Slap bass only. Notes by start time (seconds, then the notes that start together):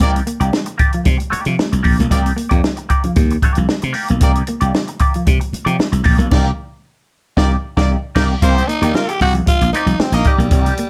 0.00 C2
0.40 C2
1.06 C3
1.33 muted slap bass stroke
1.46 C3
1.73 C2
1.85 A#1
1.99 B1
2.11 C2
2.51 F2
3.16 D#2
3.58 C2
3.83 C3
4.10 B1
4.22 C2
4.61 C2
5.27 C3
5.53 muted slap bass stroke
5.66 C3
5.92 C2
6.05 A#1
6.18 B1
6.32 C2
7.37 C2
7.77 C2
8.16 C2
8.42 C2
8.82 D#2
9.21 C2
9.61 A#1
9.86 C2
9.99 muted slap bass stroke
10.12 A#1
10.38 B1
10.51 C2